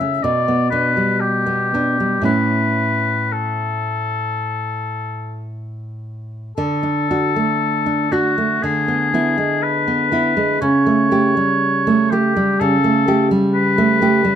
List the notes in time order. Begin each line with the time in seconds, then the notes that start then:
Already playing: C#3 E5
0.01 C#4
0.23 B2 D5
0.48 B3
0.70 B3 D4 B4
0.97 G3
1.20 G4
1.46 B3
1.74 B3 D4
2.00 G3
2.22 A2 C#4 E4 B4
3.32 A4
6.57 D3 A4
6.83 D4
7.11 D4 F#4
7.36 A3
7.86 D4
8.12 D4 F#4
8.38 A3
8.63 D3 G#4
8.88 B3
9.14 B3 E4
9.38 G#3
9.62 B4
9.88 B3
10.12 B3 E4
10.37 G#3
10.61 C#3 C#5
10.86 A3
11.11 A3 G4
11.37 G3
11.87 A3
12.11 A3 G4
12.36 G3
12.60 C#3 A4
12.84 A3
13.08 A3 G4
13.31 G3
13.53 B4
13.78 A3
14.02 A3 G4
14.25 G3